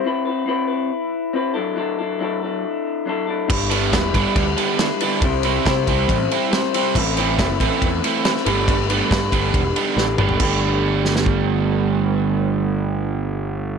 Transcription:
<<
  \new Staff \with { instrumentName = "Clean electric guitar" } { \time 4/4 \key g \major \tempo 4 = 139 <c' e' b'>8 <e' b'>8 <c' e' b'>8 <e' b'>4. <c' e' b'>8 <fis d' e' a'>8 | <fis d' e' a'>8 <d' e' a'>8 <fis d' e' a'>8 <d' e' a'>4. <fis d' e' a'>8 <d' e' a'>8 | <g d' e' b'>8 <d' e' b'>8 <g d' e' b'>8 <d' e' b'>4. <g d' e' b'>8 <d' e' b'>8 | <g c' e' c''>8 <c' e' c''>8 <g c' e' c''>8 <c' e' c''>4. <g c' e' c''>8 <c' e' c''>8 |
<a c' e' b'>8 <c' e' b'>8 <a c' e' b'>8 <c' e' b'>4. <a c' e' b'>8 <a d' g' b'>8 | <a d' g' b'>8 <d' g' b'>8 <a d' g' b'>8 <d' g' b'>4. <a d' g' b'>8 <d' g' b'>8 | <a d' g' b'>1~ | <a d' g' b'>1 | }
  \new Staff \with { instrumentName = "Overdriven electric guitar" } { \time 4/4 \key g \major r1 | r1 | r8 <d g b d'>8 r8 <d g b d'>8 r8 <d g b d'>8 r8 <d g b d'>8 | r8 <c g c' e'>8 r8 <c g c' e'>8 r8 <c g c' e'>8 r8 <c g c' e'>8 |
r8 <e a c' e'>8 r8 <e a c' e'>8 r8 <e a c' e'>8 r8 <d g b d'>8 | r8 <d g b d'>8 r8 <d g b d'>8 r8 <d g b d'>8 r8 <d g b d'>8 | <g, d g b d' g'>1~ | <g, d g b d' g'>1 | }
  \new Staff \with { instrumentName = "Picked electric bass" } { \clef bass \time 4/4 \key g \major r1 | r1 | g,,4 e,,8 g,,16 r16 d,8 r4. | c,4 c8 c,8 a,,8 r4. |
a,,4 fis,,8 a,,16 r16 e,8 r4 g,,8~ | g,,4 g,8 g,,8 e,,8 r8 a,,8 g,,8 | g,,1~ | g,,1 | }
  \new DrumStaff \with { instrumentName = "Drums" } \drummode { \time 4/4 r4 r4 r4 r4 | r4 r4 r4 r4 | <cymc bd>8 cymr8 <bd cymr sn>8 <bd cymr>8 <bd cymr>8 cymr8 <cymr sn>8 cymr8 | <bd cymr>8 cymr8 <bd cymr sn>8 <bd cymr>8 <bd cymr>8 cymr8 <cymr sn>8 cymr8 |
<cymc bd>8 cymr8 <bd cymr sn>8 <bd cymr>8 <bd cymr>8 cymr8 <cymr sn>16 sn16 cymr8 | <bd cymr>8 cymr8 <bd cymr sn>8 <bd cymr>8 <bd cymr>8 cymr8 sn8 toml16 tomfh16 | <cymc bd>4 r8 sn16 sn16 bd4 r4 | r4 r4 r4 r4 | }
>>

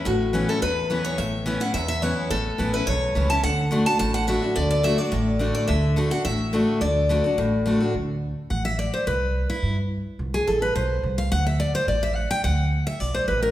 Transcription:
<<
  \new Staff \with { instrumentName = "Steel-string acoustic guitar" } { \time 4/4 \key d \major \tempo 4 = 213 fis'4. a'8 b'4. cis''8 | e''4. fis''8 e''8 e''8 cis''4 | a'4. b'8 cis''4. a''8 | fis''4. a''8 a''8 fis''8 e''4 |
d''8 d''8 e''8 d''2 d''8 | e''4 r8 fis''8 e''2 | d''2. r4 | \key d \mixolydian r1 |
r1 | r1 | r1 | r1 | }
  \new Staff \with { instrumentName = "Steel-string acoustic guitar" } { \time 4/4 \key d \major << { r4 <e b cis' e'>8 <cis' e'>8 r4 <e b cis' e'>4 | r4 <e b cis' e'>8 <cis' e'>8 r4 <e b cis' e'>4 | r4 <e b cis' e'>8 <cis' e'>8 r4 <e b cis' e'>8 <cis' e'>8 | r4 <d a d' fis'>8 <d' fis'>8 r4 <d a d' fis'>8 <d' fis'>8 |
r4 <d a d' fis'>8 <d' fis'>8 r4 <d a d' fis'>4 | r4 <d a d' fis'>8 <d' fis'>8 r4 <d a d' fis'>4 | r4 <d a d' fis'>8 <d' fis'>8 r4 <d a d' fis'>8 <d' fis'>8 | \key d \mixolydian r2 fis''8 e''8 d''8 c''8 |
b'4. e'4 r4. | r8 gis'8 a'8 b'8 c''4. f''8 | fis''8 e''8 d''8 c''8 d''8 e''8 fis''8 g''8 | fis''4. e''8 d''8 c''8 b'8 bes'8 | } \\ { a,2 e,2 | a,2 e,2 | a,2 e,2 | d2 a,2 |
d2 a,2 | d2 a,2 | d2 a,2 | r1 |
r1 | r1 | r1 | r1 | } >> }
  \new Staff \with { instrumentName = "Upright bass" } { \clef bass \time 4/4 \key d \major a,,2 e,2 | a,,2 e,2 | a,,4 a,,4 b,,4 cis,4 | d,2 a,,2 |
d,2 a,,2 | d,2 a,,2 | d,2 a,,2 | \key d \mixolydian d,2 a,,2 |
c,2 g,2 | c,4 a,,4 b,,4 c,4 | d,2 a,,2 | d,2 b,,4 a,,4 | }
>>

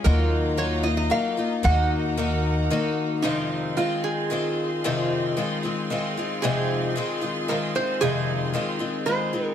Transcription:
<<
  \new Staff \with { instrumentName = "String section" } { \time 3/4 \key f \phrygian \tempo 4 = 113 << { <ges f'' bes''>2. | <bes' ges'' bes''>2. | <ees'' f'' c'''>2.~ | <ees'' f'' c'''>2.~ |
<ees'' f'' c'''>2.~ | <ees'' f'' c'''>2. | } \\ { ees'2.~ | ees'2. | aes'2.~ | aes'2.~ |
aes'2.~ | aes'2. | } >> }
  \new Staff \with { instrumentName = "Resonator guitar played with a steel bar" } { \time 3/4 \key f \phrygian bes'4 des''8 ees''16 ees''16 f''4 | ges''8 r2 r8 | ees'4 f'8 aes'4.~ | aes'2. |
aes'2 bes'8 c''8 | aes'2 c''4 | }
  \new Staff \with { instrumentName = "Twelve-string acoustic guitar" } { \time 3/4 \key f \phrygian <ees ges bes ees' f'>4 <ges bes ees' f'>8 <bes ees' f'>8 <ges bes ees' f'>8 <bes ees' f'>8 | <ees bes ees' ges'>4 <ees bes ees' ges'>4 <ees bes ees' ges'>4 | <f, c ees aes c' f'>4 <ees aes c' f'>4 <ees aes c' f'>4 | <f, c ees aes c' f'>4 <ees aes c' f'>8 <ees aes c' f'>8 <ees aes c' f'>8 <ees aes c' f'>8 |
<f, c ees aes c' f'>4 <ees aes c' f'>8 <ees aes c' f'>8 <ees aes c' f'>8 <ees aes c' f'>8 | <f, c ees aes c' f'>4 <ees aes c' f'>8 <ees aes c' f'>8 <ees aes c' f'>8 <ees aes c' f'>8 | }
  \new Staff \with { instrumentName = "Upright bass" } { \clef bass \time 3/4 \key f \phrygian ees,2 r4 | ees,2 r4 | r2. | r2. |
r2. | r2. | }
>>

